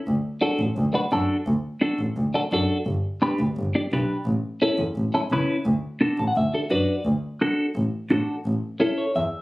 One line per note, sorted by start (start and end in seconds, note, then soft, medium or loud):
0.07 0.15 D2 medium
0.41 0.60 D4 medium
0.41 0.60 F#4 medium
0.41 0.60 A4 medium
0.59 0.67 A1 medium
0.77 0.85 D2 medium
0.94 1.00 D4 medium
0.94 1.01 F#4 medium
0.94 1.01 B4 medium
1.11 1.19 F#2 medium
1.11 1.36 D4 medium
1.11 1.37 F#4 medium
1.11 1.37 A4 medium
1.47 1.55 D2 medium
1.81 2.00 D4 medium
1.81 2.00 F#4 medium
1.81 2.00 A4 medium
1.99 2.07 A1 medium
2.17 2.25 D2 medium
2.34 2.40 D4 medium
2.34 2.41 F#4 medium
2.34 2.41 A4 medium
2.52 2.60 F#2 medium
2.52 2.77 D4 medium
2.52 2.77 F#4 medium
2.52 2.77 A4 medium
2.87 2.95 G1 medium
3.22 3.40 D4 medium
3.22 3.40 G4 medium
3.22 3.40 B4 medium
3.39 3.47 D2 medium
3.57 3.65 G1 loud
3.75 3.81 D4 medium
3.75 3.81 G4 medium
3.75 3.81 D5 medium
3.92 4.00 B1 medium
3.92 4.17 D4 medium
3.92 4.17 G4 medium
3.92 4.17 B4 medium
4.26 4.34 A1 medium
4.62 4.80 C#4 medium
4.62 4.80 E4 medium
4.62 4.80 A4 medium
4.78 4.86 E2 medium
4.96 5.04 A1 medium
5.14 5.20 C#4 medium
5.14 5.20 E4 medium
5.14 5.20 A4 medium
5.31 5.39 C#2 medium
5.31 5.56 C#4 medium
5.31 5.56 E4 medium
5.31 5.56 B4 medium
5.66 5.74 D2 medium
6.01 6.19 D4 medium
6.01 6.19 F#4 medium
6.01 6.20 A4 medium
6.18 6.26 A1 medium
6.18 6.27 A5 medium
6.28 6.35 F#5 medium
6.36 6.44 D2 medium
6.36 6.69 E5 medium
6.54 6.60 D4 medium
6.54 6.60 F#4 medium
6.54 6.60 A4 medium
6.70 6.79 F#2 medium
6.70 6.95 D4 medium
6.70 6.95 F#4 medium
6.70 6.95 B4 medium
6.70 7.03 D5 medium
7.05 7.13 D2 medium
7.41 7.65 D4 medium
7.41 7.66 F#4 medium
7.41 7.66 A4 medium
7.76 7.84 A1 medium
8.10 8.19 A1 medium
8.10 8.35 D4 medium
8.10 8.35 F#4 medium
8.10 8.36 A4 medium
8.46 8.54 A1 medium
8.80 9.05 C#4 medium
8.80 9.05 E4 medium
8.80 9.05 A4 medium
8.98 9.14 C#5 medium
9.16 9.24 E2 medium
9.16 9.42 E5 medium